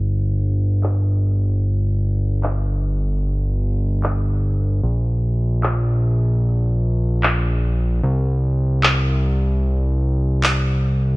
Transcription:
0, 0, Header, 1, 3, 480
1, 0, Start_track
1, 0, Key_signature, -2, "minor"
1, 0, Tempo, 500000
1, 10721, End_track
2, 0, Start_track
2, 0, Title_t, "Analog synth bass"
2, 0, Program_c, 0, 38
2, 0, Note_on_c, 0, 31, 80
2, 4622, Note_off_c, 0, 31, 0
2, 4640, Note_on_c, 0, 34, 82
2, 7694, Note_off_c, 0, 34, 0
2, 7711, Note_on_c, 0, 36, 83
2, 10721, Note_off_c, 0, 36, 0
2, 10721, End_track
3, 0, Start_track
3, 0, Title_t, "Drums"
3, 801, Note_on_c, 9, 39, 87
3, 897, Note_off_c, 9, 39, 0
3, 2337, Note_on_c, 9, 39, 86
3, 2433, Note_off_c, 9, 39, 0
3, 3873, Note_on_c, 9, 39, 82
3, 3969, Note_off_c, 9, 39, 0
3, 5408, Note_on_c, 9, 39, 78
3, 5504, Note_off_c, 9, 39, 0
3, 6944, Note_on_c, 9, 39, 77
3, 7040, Note_off_c, 9, 39, 0
3, 8481, Note_on_c, 9, 39, 82
3, 8577, Note_off_c, 9, 39, 0
3, 10018, Note_on_c, 9, 39, 88
3, 10114, Note_off_c, 9, 39, 0
3, 10721, End_track
0, 0, End_of_file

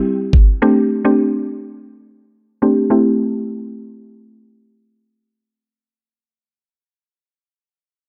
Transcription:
0, 0, Header, 1, 3, 480
1, 0, Start_track
1, 0, Key_signature, 0, "minor"
1, 0, Tempo, 571429
1, 522, Time_signature, 4, 2, 24, 8
1, 6789, End_track
2, 0, Start_track
2, 0, Title_t, "Synth pluck"
2, 0, Program_c, 0, 84
2, 520, Note_on_c, 0, 57, 95
2, 522, Note_on_c, 0, 60, 82
2, 522, Note_on_c, 0, 62, 80
2, 525, Note_on_c, 0, 67, 101
2, 661, Note_off_c, 0, 57, 0
2, 662, Note_off_c, 0, 60, 0
2, 663, Note_off_c, 0, 62, 0
2, 664, Note_off_c, 0, 67, 0
2, 878, Note_on_c, 0, 57, 77
2, 880, Note_on_c, 0, 60, 71
2, 882, Note_on_c, 0, 62, 71
2, 882, Note_on_c, 0, 67, 84
2, 1020, Note_off_c, 0, 57, 0
2, 1021, Note_off_c, 0, 60, 0
2, 1022, Note_off_c, 0, 62, 0
2, 1022, Note_off_c, 0, 67, 0
2, 2200, Note_on_c, 0, 57, 74
2, 2202, Note_on_c, 0, 60, 72
2, 2203, Note_on_c, 0, 62, 71
2, 2205, Note_on_c, 0, 67, 84
2, 2422, Note_off_c, 0, 57, 0
2, 2423, Note_off_c, 0, 60, 0
2, 2423, Note_off_c, 0, 62, 0
2, 2424, Note_off_c, 0, 67, 0
2, 2437, Note_on_c, 0, 57, 85
2, 2439, Note_on_c, 0, 60, 78
2, 2442, Note_on_c, 0, 64, 76
2, 2445, Note_on_c, 0, 67, 88
2, 5462, Note_off_c, 0, 57, 0
2, 5465, Note_off_c, 0, 60, 0
2, 5467, Note_off_c, 0, 64, 0
2, 5470, Note_off_c, 0, 67, 0
2, 6789, End_track
3, 0, Start_track
3, 0, Title_t, "Drums"
3, 279, Note_on_c, 9, 36, 91
3, 363, Note_off_c, 9, 36, 0
3, 6789, End_track
0, 0, End_of_file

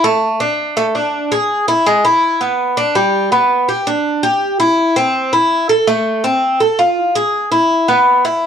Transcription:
0, 0, Header, 1, 2, 480
1, 0, Start_track
1, 0, Tempo, 364742
1, 54, Time_signature, 4, 2, 24, 8
1, 11141, End_track
2, 0, Start_track
2, 0, Title_t, "Cuban tres"
2, 0, Program_c, 0, 25
2, 50, Note_on_c, 0, 57, 84
2, 517, Note_off_c, 0, 57, 0
2, 527, Note_on_c, 0, 62, 74
2, 995, Note_off_c, 0, 62, 0
2, 1012, Note_on_c, 0, 57, 76
2, 1245, Note_off_c, 0, 57, 0
2, 1253, Note_on_c, 0, 62, 69
2, 1718, Note_off_c, 0, 62, 0
2, 1736, Note_on_c, 0, 68, 82
2, 2199, Note_off_c, 0, 68, 0
2, 2213, Note_on_c, 0, 64, 78
2, 2445, Note_off_c, 0, 64, 0
2, 2454, Note_on_c, 0, 56, 82
2, 2686, Note_off_c, 0, 56, 0
2, 2693, Note_on_c, 0, 64, 75
2, 3157, Note_off_c, 0, 64, 0
2, 3170, Note_on_c, 0, 59, 63
2, 3636, Note_off_c, 0, 59, 0
2, 3648, Note_on_c, 0, 62, 77
2, 3882, Note_off_c, 0, 62, 0
2, 3887, Note_on_c, 0, 55, 77
2, 4355, Note_off_c, 0, 55, 0
2, 4368, Note_on_c, 0, 59, 70
2, 4835, Note_off_c, 0, 59, 0
2, 4850, Note_on_c, 0, 67, 67
2, 5083, Note_off_c, 0, 67, 0
2, 5091, Note_on_c, 0, 62, 69
2, 5557, Note_off_c, 0, 62, 0
2, 5569, Note_on_c, 0, 67, 78
2, 6036, Note_off_c, 0, 67, 0
2, 6051, Note_on_c, 0, 64, 79
2, 6517, Note_off_c, 0, 64, 0
2, 6532, Note_on_c, 0, 60, 76
2, 6998, Note_off_c, 0, 60, 0
2, 7013, Note_on_c, 0, 64, 69
2, 7478, Note_off_c, 0, 64, 0
2, 7493, Note_on_c, 0, 69, 78
2, 7725, Note_off_c, 0, 69, 0
2, 7731, Note_on_c, 0, 57, 85
2, 8197, Note_off_c, 0, 57, 0
2, 8212, Note_on_c, 0, 60, 68
2, 8677, Note_off_c, 0, 60, 0
2, 8691, Note_on_c, 0, 69, 64
2, 8924, Note_off_c, 0, 69, 0
2, 8933, Note_on_c, 0, 65, 64
2, 9398, Note_off_c, 0, 65, 0
2, 9415, Note_on_c, 0, 68, 81
2, 9879, Note_off_c, 0, 68, 0
2, 9891, Note_on_c, 0, 64, 74
2, 10357, Note_off_c, 0, 64, 0
2, 10373, Note_on_c, 0, 59, 79
2, 10838, Note_off_c, 0, 59, 0
2, 10851, Note_on_c, 0, 64, 74
2, 11141, Note_off_c, 0, 64, 0
2, 11141, End_track
0, 0, End_of_file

